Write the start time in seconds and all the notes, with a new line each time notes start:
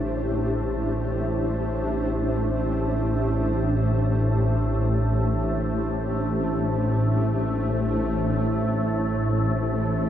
Already playing: A1 A2 A3 D4 G4 C5
7.85 E4
7.93 A4